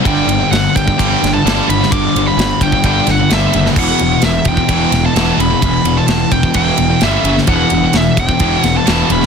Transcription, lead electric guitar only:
0.07 0.51 G5 loud
0.51 0.75 F#5 medium
0.76 1.33 G5 loud
1.34 1.66 A5 loud
1.70 1.92 B5 loud
1.92 2.24 D6 loud
2.27 2.62 B5 loud
2.63 2.85 G5 loud
2.86 3.07 G5 loud
3.11 3.33 F#5 medium
3.33 3.64 E5 loud
3.79 4.21 F#5 loud
4.25 4.48 E5 medium
4.48 5.05 G5 loud
5.06 5.37 A5 loud
5.41 5.62 B5 loud
5.63 5.98 B5 loud
5.98 6.32 A5 loud
6.32 6.55 G5 medium
6.57 6.99 G5 loud
7.04 7.35 E5 medium
7.49 7.96 F#5 loud
7.97 8.19 E5 medium
8.20 8.62 G5 loud
8.62 8.77 F#5 loud
8.77 9.12 A5 medium
9.12 9.26 B5 loud

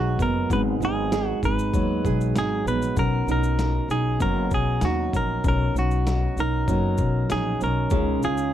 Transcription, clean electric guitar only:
0.00 0.21 F#4 medium
0.22 0.49 A#4 medium
0.53 0.61 B4 loud
0.85 1.28 G#4 medium
1.28 1.40 F#4 medium
1.45 2.38 B4 loud
2.38 2.68 G#4 medium
2.68 2.96 B4 medium
2.99 3.30 A#4 loud
3.32 3.91 A#4 medium
3.91 4.19 G#4 medium
4.22 4.53 A#4 loud
4.54 4.85 G#4 medium
4.85 5.15 F#4 medium
5.17 5.47 A#4 medium
5.48 5.75 A#4 loud
5.79 6.41 F#4 medium
6.40 7.31 A#4 loud
7.32 7.63 G#4 medium
7.64 8.24 A#4 medium
8.25 8.53 G#4 medium

